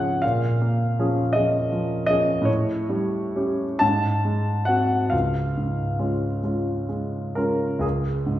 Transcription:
Already playing: C#2 G#2 F3 C#4 G#4 F#5 G#5
0.22 A#2 F5
0.61 A#3
0.99 F3 C#4 G#4
1.33 F3 C#4 G#4 D#5
1.72 F3
2.06 F3 C#4 G#4 D#5
2.42 A2 C#5
2.89 G3
3.36 C#4 G4
3.79 G#2 A5
4.25 G#3
4.65 C4 F#4 F#5
5.10 C#2 F5
5.57 G#2
5.99 G#3 C#4 F4
6.43 G#3 C#4 F4
6.89 G#3
7.35 G#3 C#4 F4 A#4
7.79 C#2 G#4
8.26 G#2

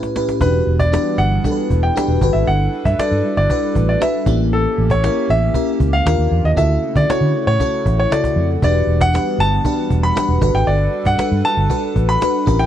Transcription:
Already playing: A2 C#4 E4 G4 B4
0.03 cajon slap
0.15 A2 C#4 E4 G4 B4, cajon slap
0.29 cajon slap
0.40 E1 E3 G3 B3 D4 E4 F#4 G4 B4, cajon bass
0.67 E1, cajon slap
0.79 D5, cajon bass
0.92 D4 F#4 G4 B4, cajon slap
1.18 G1 F#5
1.44 D4 F#4 G4 A4, cajon bass
1.51 B4
1.58 cajon slap
1.70 E1, cajon bass
1.83 G5
1.96 D4 F#4 G4 B4, cajon slap
2.08 E1
2.21 G1 G3 D4 F#4 A4 B4, cajon bass
2.33 G#1 E5
2.47 G1 F#5, cajon slap
2.60 cajon slap
2.73 cajon slap
2.85 G2 E5, cajon bass
2.98 D4 F#4 A4 B4 D5, muted fingered electric bass stroke, cajon slap
3.11 G2
3.37 G1 D5, cajon slap
3.50 D4 F#4 A4 B4, cajon bass
3.75 A1, cajon bass
3.89 D5
4.00 D4 F#4 A4 B4 E5, cajon slap
4.25 A1 A#3 C#4 E4 G4, cajon bass
4.51 A4, cajon slap
4.77 A1, cajon slap
4.90 C#5, cajon bass
5.03 C#4 E4 G4 A#4, cajon slap
5.30 A1 E5
5.41 cajon slap
5.54 C#4 E4 G4 A#4, cajon bass
5.80 C#2, cajon bass
5.93 F5
6.06 D#2 D#3 A#3 D4 F4 G4 A#4, cajon slap
6.18 D#2
6.31 E2
6.44 D#2 D#5
6.56 D2 C#3 A3 C#4 E4 F#4 A4 E5 F#5, cajon bass
6.83 cajon slap
6.96 D3 D5, cajon bass
7.09 C#4 E4 F#4 A4 C#5, muted fingered electric bass stroke, cajon slap
7.21 D3
7.47 A2 C#5
7.60 C#4 E4 F#4 A4, cajon bass
7.86 A1, cajon bass
7.99 C#5
8.10 C#3 E4 F#4 A4 D5, cajon slap
8.24 cajon bass, cajon slap
8.36 F2
8.50 cajon slap
8.62 E1 E3 G3 B3 D4 F#4 G4 B4 D5, cajon bass
8.87 E1, cajon slap
9.00 F#5, cajon bass
9.13 D4 F#4 G4 B4, cajon slap
9.38 G1 A5
9.65 D4 F#4 G4 B4, cajon bass
9.90 E1, cajon bass
10.03 B5
10.15 D4 F#4 G4 B4, cajon slap
10.28 E1
10.41 G1 G3 D4 F#4 A4 B4, cajon bass
10.54 G#1 G5
10.67 G1 D5, cajon slap
10.93 cajon slap
11.05 G2 F#5, cajon bass
11.18 D4 F#4 A4 B4, muted fingered electric bass stroke, cajon slap
11.32 G2
11.45 A5
11.57 G1, cajon slap
11.70 D4 F#4 A4 B4, cajon bass
11.96 A1, cajon bass
12.09 B5
12.21 D4 F#4 A4 B4, cajon slap
12.46 A1 C#3 A3 C#4 E4 G4 A#4, cajon bass
12.59 G5

